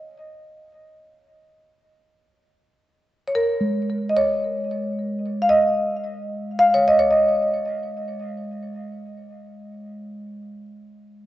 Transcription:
0.00 0.58 D#5 medium
3.28 3.35 C#5 soft
3.35 4.12 A#4 medium
3.61 11.26 G#3 medium
4.09 4.17 D#5 soft
4.17 5.46 C#5 medium
5.42 5.49 F5 medium
5.49 6.62 D#5 medium
6.59 6.75 F5 medium
6.74 6.87 C#5 medium
6.88 6.99 D#5 medium
6.99 7.12 C#5 medium
7.11 10.67 D#5 medium

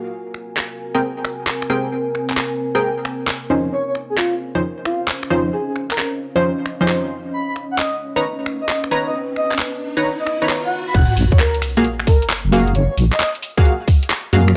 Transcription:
0.00 0.11 A#3 medium
0.00 0.11 F#4 medium
0.00 0.12 F#4 medium
0.00 0.11 G#4 medium
0.00 4.53 A#4 medium
0.00 0.11 F5 loud
0.00 1.47 F5 medium
0.00 4.56 G#5 medium
0.11 3.50 C4 medium
0.34 finger snap soft
0.57 clap loud
0.94 1.01 C4 medium
0.94 1.01 G#4 medium
0.94 1.01 A#4 medium
0.94 1.01 G5 loud
1.24 finger snap medium
1.47 clap loud
1.62 finger snap soft
1.70 1.88 C4 loud
1.70 1.88 G#4 medium
1.70 1.88 A#4 medium
1.70 1.88 G5 loud
2.15 finger snap soft
2.30 clap medium
2.37 clap loud
2.75 2.90 C4 medium
2.75 2.90 G#4 medium
2.75 2.90 A#4 medium
2.75 2.90 G5 loud
3.05 finger snap medium
3.27 clap loud
3.50 3.69 F3 medium
3.50 3.69 C#4 medium
3.50 10.94 C#4 medium
3.50 3.69 D#4 medium
3.50 3.69 C5 medium
3.58 7.33 C5 medium
3.73 3.82 C#5 medium
3.88 3.92 C#5 medium
3.95 finger snap soft
4.10 4.16 G#4 medium
4.17 4.34 F4 medium
4.17 clap loud
4.53 4.62 F3 medium
4.53 4.62 C#4 medium
4.53 4.62 D#4 medium
4.53 4.62 C5 loud
4.53 10.94 D#5 medium
4.85 5.02 F4 medium
4.85 finger snap medium
4.93 8.44 F5 medium
5.08 clap loud
5.23 finger snap soft
5.30 5.49 F3 medium
5.30 5.49 C#4 medium
5.30 5.49 D#4 medium
5.30 5.49 C5 loud
5.53 5.63 G#4 medium
5.68 5.73 G#4 medium
5.76 finger snap soft
5.91 5.95 A#4 medium
5.91 clap medium
5.98 6.08 A#4 medium
5.98 clap loud
6.36 6.51 F3 medium
6.36 6.51 C#4 medium
6.36 6.51 D#4 medium
6.36 6.51 C5 loud
6.66 finger snap medium
6.81 7.33 F3 medium
6.81 7.33 C#4 medium
6.81 7.33 D#4 medium
6.81 7.33 C5 loud
6.88 clap loud
7.33 7.43 B5 medium
7.33 riser medium
7.48 7.53 B5 medium
7.56 finger snap soft
7.67 10.94 B4 medium
7.67 7.77 F#5 medium
7.78 7.95 D#5 medium
7.78 clap loud
8.16 8.23 D#4 medium
8.16 8.23 B4 medium
8.16 8.23 C#5 medium
8.16 8.23 A#5 loud
8.46 finger snap medium
8.61 8.66 D#5 medium
8.69 8.78 D#5 medium
8.69 clap loud
8.83 10.95 A#5 medium
8.83 finger snap soft
8.91 9.10 D#4 loud
8.91 9.10 B4 medium
8.91 9.10 C#5 medium
8.91 9.10 A#5 loud
9.06 9.17 D#5 medium
9.36 9.53 D#5 medium
9.36 finger snap soft
9.51 clap medium
9.59 clap loud
9.97 10.12 D#4 medium
9.97 10.12 B4 medium
9.97 10.12 C#5 medium
9.97 10.12 A#5 loud
10.19 10.49 D#5 medium
10.27 finger snap medium
10.42 10.93 D#4 medium
10.42 10.94 B4 medium
10.42 10.94 C#5 medium
10.42 10.93 A#5 loud
10.49 clap loud
10.65 10.75 F#5 medium
10.87 10.92 B5 medium
10.94 11.07 F#1 loud
10.94 11.04 F#5 medium
10.94 kick loud
10.94 closed hi-hat medium
10.94 crash loud
10.94 sub drop medium
11.10 11.14 F#5 medium
11.17 11.30 A#1 loud
11.17 open hi-hat loud
11.32 11.38 C#5 medium
11.32 kick loud
11.39 11.56 A#4 medium
11.39 clap loud
11.39 closed hi-hat medium
11.55 closed hi-hat medium
11.62 finger snap medium
11.62 open hi-hat loud
11.77 11.84 A#3 medium
11.77 11.84 F#4 medium
11.77 11.84 G#4 medium
11.77 11.84 F5 loud
11.77 closed hi-hat soft
11.85 closed hi-hat medium
12.00 finger snap medium
12.07 12.24 A#4 loud
12.07 kick loud
12.07 open hi-hat loud
12.22 closed hi-hat medium
12.30 clap loud
12.30 closed hi-hat medium
12.45 12.73 F#1 medium
12.52 12.71 A#3 loud
12.52 12.71 F#4 medium
12.52 12.71 G#4 medium
12.52 12.71 F5 loud
12.52 open hi-hat loud
12.67 closed hi-hat soft
12.75 12.88 F#1 loud
12.75 12.85 C#5 medium
12.75 closed hi-hat medium
12.90 12.95 C#5 medium
12.97 13.10 A#1 loud
12.97 open hi-hat loud
13.12 13.17 D#5 medium
13.12 clap medium
13.20 13.30 D#5 medium
13.20 clap loud
13.20 closed hi-hat medium
13.35 closed hi-hat medium
13.42 open hi-hat loud
13.57 13.72 A#3 medium
13.57 13.72 F#4 medium
13.57 13.72 G#4 medium
13.57 13.72 F5 loud
13.57 kick loud
13.57 closed hi-hat soft
13.65 closed hi-hat medium
13.88 kick loud
13.88 open hi-hat loud
14.03 closed hi-hat medium
14.10 clap loud
14.10 closed hi-hat medium
14.33 14.53 F#2 loud
14.33 14.52 A#3 medium
14.33 14.52 F#4 medium
14.33 14.52 G#4 medium
14.33 14.52 F5 loud
14.33 open hi-hat loud
14.48 finger snap medium
14.48 closed hi-hat soft

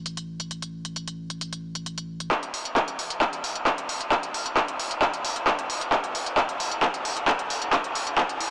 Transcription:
0.00 2.29 A1 medium
0.06 closed hi-hat medium
0.17 closed hi-hat medium
0.40 closed hi-hat medium
0.51 closed hi-hat medium
0.62 closed hi-hat medium
0.85 closed hi-hat medium
0.96 closed hi-hat medium
1.08 closed hi-hat medium
1.30 closed hi-hat medium
1.41 closed hi-hat medium
1.53 closed hi-hat medium
1.75 closed hi-hat medium
1.86 closed hi-hat medium
1.98 closed hi-hat medium
2.20 closed hi-hat medium
2.31 kick loud
2.31 clap soft
2.31 closed hi-hat medium
2.43 closed hi-hat medium
2.54 open hi-hat loud
2.65 closed hi-hat medium
2.76 kick loud
2.76 clap soft
2.76 closed hi-hat medium
2.88 closed hi-hat medium
2.99 open hi-hat medium
3.10 closed hi-hat medium
3.21 kick loud
3.21 clap medium
3.21 closed hi-hat medium
3.33 closed hi-hat medium
3.44 open hi-hat loud
3.56 closed hi-hat medium
3.67 kick loud
3.67 clap medium
3.67 closed hi-hat medium
3.78 closed hi-hat medium
3.89 open hi-hat medium
4.01 closed hi-hat medium
4.12 kick loud
4.12 clap medium
4.12 closed hi-hat medium
4.23 closed hi-hat medium
4.34 open hi-hat loud
4.46 closed hi-hat medium
4.57 kick loud
4.57 clap medium
4.57 closed hi-hat medium
4.68 closed hi-hat medium
4.80 open hi-hat medium
4.91 closed hi-hat medium
5.02 kick loud
5.02 clap medium
5.02 closed hi-hat medium
5.14 closed hi-hat medium
5.25 open hi-hat loud
5.36 closed hi-hat medium
5.47 kick loud
5.47 clap medium
5.47 closed hi-hat medium
5.59 closed hi-hat medium
5.70 open hi-hat medium
5.81 closed hi-hat medium
5.92 kick loud
5.92 clap medium
5.92 closed hi-hat medium
6.04 closed hi-hat medium
6.15 open hi-hat loud
6.26 closed hi-hat medium
6.37 kick loud
6.37 clap medium
6.37 closed hi-hat medium
6.49 closed hi-hat medium
6.60 open hi-hat medium
6.72 closed hi-hat medium
6.83 kick loud
6.83 clap medium
6.83 closed hi-hat medium
6.94 closed hi-hat medium
7.05 open hi-hat loud
7.17 closed hi-hat medium
7.28 kick loud
7.28 clap medium
7.28 closed hi-hat medium
7.39 closed hi-hat medium
7.50 open hi-hat loud
7.62 closed hi-hat medium
7.73 kick loud
7.73 clap medium
7.73 closed hi-hat medium
7.84 closed hi-hat medium
7.95 open hi-hat loud
8.07 closed hi-hat medium
8.18 kick loud
8.18 clap medium
8.18 closed hi-hat medium
8.29 closed hi-hat medium
8.41 open hi-hat loud

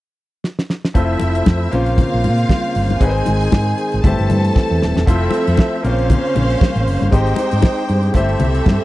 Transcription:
0.44 snare medium
0.59 snare medium
0.70 snare medium
0.85 snare medium
0.94 1.15 F1 medium
0.94 1.72 F3 medium
0.94 1.72 A3 medium
0.94 1.71 C4 medium
0.94 1.73 E4 medium
0.94 1.71 E4 medium
0.94 1.72 F4 medium
0.94 1.72 A4 medium
0.94 4.00 C5 medium
0.94 1.73 C5 medium
0.94 1.71 E5 medium
0.94 1.72 E5 medium
0.94 kick loud
0.94 closed hi-hat medium
1.20 1.41 F1 medium
1.20 closed hi-hat medium
1.20 muted conga medium
1.35 closed hi-hat soft
1.46 1.66 F2 medium
1.46 kick loud
1.46 snare loud
1.46 high conga medium
1.71 2.03 A#1 loud
1.71 2.99 C#3 medium
1.71 2.98 A#3 medium
1.71 3.00 A#3 medium
1.71 2.98 C4 medium
1.71 2.99 C#4 medium
1.71 2.98 F4 medium
1.71 2.99 F4 medium
1.71 3.00 C5 medium
1.71 2.98 F5 loud
1.71 closed hi-hat medium
1.71 muted conga soft
1.86 closed hi-hat soft
1.98 kick medium
1.98 closed hi-hat medium
1.98 muted conga medium
1.98 low conga medium
2.14 2.27 A#1 medium
2.24 2.44 A#2 medium
2.24 closed hi-hat soft
2.24 muted conga medium
2.38 closed hi-hat soft
2.49 kick medium
2.49 snare medium
2.49 high conga medium
2.64 closed hi-hat soft
2.75 2.95 G1 medium
2.75 open hi-hat medium
2.90 closed hi-hat soft
2.90 high conga medium
3.00 3.20 G#1 loud
3.00 4.02 D#3 medium
3.00 4.01 G#3 medium
3.00 4.03 G#3 medium
3.00 4.02 C4 medium
3.00 4.02 D#4 medium
3.00 4.02 G#4 medium
3.00 4.03 G#4 medium
3.00 3.09 B4 medium
3.00 4.01 G#5 medium
3.00 kick medium
3.00 closed hi-hat medium
3.09 4.05 C5 medium
3.26 3.47 G#1 loud
3.26 closed hi-hat medium
3.26 muted conga medium
3.41 closed hi-hat soft
3.52 3.72 G#2 medium
3.52 kick medium
3.52 snare loud
3.52 high conga medium
3.67 closed hi-hat soft
3.78 closed hi-hat medium
3.92 4.02 G#1 medium
3.92 closed hi-hat soft
4.04 4.15 G1 loud
4.04 5.06 E3 medium
4.04 5.05 A3 medium
4.04 5.06 A3 medium
4.04 5.06 C4 medium
4.04 5.05 C4 medium
4.04 5.05 E4 medium
4.04 5.06 G4 medium
4.04 5.05 A4 medium
4.04 5.06 C5 medium
4.04 5.06 A5 medium
4.04 kick loud
4.04 closed hi-hat medium
4.04 muted conga medium
4.04 low conga medium
4.18 4.27 G1 medium
4.18 closed hi-hat soft
4.30 4.49 G2 loud
4.30 closed hi-hat medium
4.30 muted conga medium
4.30 low conga medium
4.44 closed hi-hat soft
4.56 kick loud
4.56 snare medium
4.56 high conga medium
4.71 4.79 E2 medium
4.82 4.93 D#1 medium
4.82 snare medium
4.95 5.05 E1 medium
4.95 snare medium
4.95 high conga medium
5.07 5.27 F1 loud
5.07 5.84 F3 medium
5.07 5.84 A3 medium
5.07 5.82 C4 medium
5.07 5.83 C4 medium
5.07 5.84 E4 medium
5.07 5.84 F4 medium
5.07 5.84 A4 medium
5.07 5.83 A4 medium
5.07 8.84 C5 medium
5.07 5.84 C5 medium
5.07 5.84 E5 medium
5.07 5.83 E5 medium
5.07 kick medium
5.07 closed hi-hat medium
5.31 closed hi-hat medium
5.31 muted conga medium
5.47 5.56 F2 medium
5.47 closed hi-hat medium
5.57 kick loud
5.57 snare loud
5.57 high conga medium
5.83 6.14 A#1 loud
5.83 7.11 C#3 medium
5.83 7.09 A#3 medium
5.83 7.11 A#3 medium
5.83 7.10 C4 medium
5.83 7.10 C#4 medium
5.83 7.11 C#4 medium
5.83 7.10 F4 medium
5.83 7.11 C5 medium
5.83 7.11 F5 medium
5.83 closed hi-hat medium
5.99 closed hi-hat soft
6.10 kick loud
6.10 closed hi-hat medium
6.10 muted conga medium
6.10 low conga medium
6.35 6.55 A#1 medium
6.35 closed hi-hat soft
6.35 muted conga medium
6.35 low conga medium
6.50 closed hi-hat soft
6.61 kick loud
6.61 snare loud
6.61 high conga medium
6.76 6.84 A1 medium
6.76 closed hi-hat soft
6.86 6.97 F#1 medium
6.86 open hi-hat medium
7.01 7.10 G1 medium
7.01 closed hi-hat soft
7.01 high conga medium
7.11 7.32 G#1 loud
7.11 8.12 G#3 medium
7.11 8.14 G#3 medium
7.11 8.13 C4 medium
7.11 8.13 D#4 medium
7.11 8.14 G4 medium
7.11 8.13 G4 medium
7.11 8.13 C5 medium
7.11 8.14 C5 medium
7.11 8.13 G5 medium
7.11 kick medium
7.11 closed hi-hat medium
7.27 closed hi-hat soft
7.36 closed hi-hat medium
7.36 muted conga medium
7.51 7.61 G#2 medium
7.51 closed hi-hat soft
7.62 kick loud
7.62 snare loud
7.62 high conga medium
7.78 closed hi-hat soft
7.89 8.09 G2 medium
7.89 closed hi-hat medium
8.03 closed hi-hat soft
8.14 8.34 G1 loud
8.14 8.84 A3 medium
8.14 8.84 C4 medium
8.14 8.84 E4 medium
8.14 8.84 G4 medium
8.14 8.84 A4 medium
8.14 8.84 C5 medium
8.14 8.84 E5 medium
8.14 kick loud
8.14 closed hi-hat medium
8.14 muted conga medium
8.29 closed hi-hat soft
8.40 8.60 C2 medium
8.40 closed hi-hat medium
8.40 muted conga medium
8.40 low conga medium
8.54 closed hi-hat soft
8.66 8.77 G2 medium
8.66 kick loud
8.66 snare loud
8.66 high conga medium

